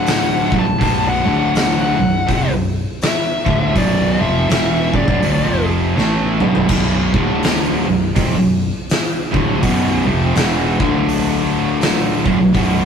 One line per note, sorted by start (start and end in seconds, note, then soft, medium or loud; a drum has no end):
0.00 0.48 D1 medium
0.00 0.51 D2 loud
0.00 0.51 A2 loud
0.00 0.52 D3 loud
0.00 0.55 F#5 loud
0.07 snare loud
0.07 open hi-hat medium
0.52 0.65 B0 medium
0.52 0.66 B1 medium
0.52 0.66 F#2 medium
0.52 kick loud
0.59 1.06 A5 medium
0.66 0.80 B0 medium
0.66 0.80 B1 medium
0.66 0.81 F#2 medium
0.81 1.23 B0 medium
0.81 1.24 B1 loud
0.81 1.25 F#2 loud
0.81 1.25 B2 loud
0.81 kick medium
0.81 open hi-hat medium
1.09 1.55 F#5 medium
1.25 1.95 D1 loud
1.25 1.98 D2 medium
1.25 1.98 A2 medium
1.25 1.99 D3 loud
1.55 1.80 F#5 medium
1.55 snare loud
1.55 open hi-hat medium
1.81 2.52 F#5 medium
1.99 2.26 B0 medium
1.99 2.23 B1 medium
1.99 2.23 F#2 medium
2.28 2.49 F1 loud
2.28 2.49 F2 loud
2.28 2.50 C3 loud
2.28 kick loud
2.28 open hi-hat medium
2.50 2.85 B0 medium
2.50 2.82 B1 medium
2.50 2.82 F#2 medium
3.02 3.74 E5 loud
3.02 snare loud
3.02 open hi-hat medium
3.46 3.74 D1 loud
3.46 3.74 D2 medium
3.46 3.75 A2 medium
3.46 3.75 D3 medium
3.46 kick loud
3.75 4.17 B0 medium
3.75 4.18 B1 loud
3.75 4.19 F#2 loud
3.75 4.19 B2 loud
3.75 4.20 D5 loud
3.75 kick loud
3.75 open hi-hat medium
4.20 4.47 F1 medium
4.20 4.47 F2 medium
4.20 4.49 C3 medium
4.20 4.49 F3 loud
4.20 4.92 E5 medium
4.48 4.91 E1 medium
4.48 4.92 E2 loud
4.48 4.92 B2 loud
4.48 4.93 E3 loud
4.48 snare loud
4.48 open hi-hat medium
4.93 5.07 F#1 medium
4.93 5.07 F#2 loud
4.93 5.08 C#3 loud
4.93 5.66 D5 loud
4.93 kick loud
5.07 5.21 B0 medium
5.07 5.22 B1 loud
5.07 5.22 F#2 loud
5.07 kick loud
5.22 5.43 D1 loud
5.22 5.44 D2 loud
5.22 5.44 A2 loud
5.22 open hi-hat medium
5.44 5.92 F1 loud
5.44 5.96 F2 loud
5.44 5.96 C3 loud
5.44 5.96 F3 loud
5.96 6.38 A1 loud
5.96 6.39 A2 medium
5.96 6.40 E3 medium
5.96 6.40 A3 loud
5.96 snare medium
6.40 6.68 B0 medium
6.40 6.68 B1 medium
6.40 6.69 F#2 loud
6.40 6.69 B2 medium
6.40 mid tom medium
6.55 floor tom medium
6.69 7.11 B0 medium
6.69 7.12 B1 loud
6.69 7.13 F#2 loud
6.69 7.13 B2 loud
6.69 kick loud
6.69 crash loud
7.13 7.83 D1 medium
7.13 7.86 D2 medium
7.13 7.86 A2 loud
7.13 7.87 D3 loud
7.13 kick loud
7.43 snare loud
7.43 open hi-hat medium
7.87 8.14 B0 medium
7.87 8.11 B1 medium
7.87 8.11 F#2 medium
8.16 8.37 F1 loud
8.16 8.37 F2 loud
8.16 8.37 C3 loud
8.16 kick loud
8.16 open hi-hat medium
8.37 8.73 B0 medium
8.37 8.69 B1 medium
8.37 8.69 F#2 medium
8.89 snare loud
8.89 open hi-hat medium
9.33 9.61 D1 medium
9.33 9.61 D2 medium
9.33 9.62 A2 loud
9.33 9.62 D3 loud
9.33 kick loud
9.62 10.04 B0 medium
9.62 10.05 B1 loud
9.62 10.05 F#2 loud
9.62 10.06 B2 loud
9.62 kick loud
9.62 open hi-hat medium
10.06 10.34 F1 loud
10.06 10.34 F2 medium
10.06 10.35 C3 medium
10.06 10.35 F3 loud
10.35 10.77 E1 medium
10.35 10.78 E2 loud
10.35 10.79 B2 loud
10.35 10.79 E3 loud
10.35 snare loud
10.35 open hi-hat medium
10.80 12.22 D1 medium
10.80 12.24 D2 loud
10.80 12.25 A2 loud
10.80 12.25 D3 loud
10.80 kick loud
11.09 open hi-hat medium
11.81 snare loud
11.81 open hi-hat medium
12.25 12.39 B0 loud
12.25 12.38 B1 medium
12.25 12.38 F#2 loud
12.25 kick loud
12.39 12.54 B0 medium
12.39 12.52 B1 medium
12.39 12.53 F#2 medium
12.53 12.85 B0 medium
12.53 12.85 B1 loud
12.53 12.85 F#2 loud
12.53 12.85 B2 loud
12.53 kick loud
12.53 open hi-hat medium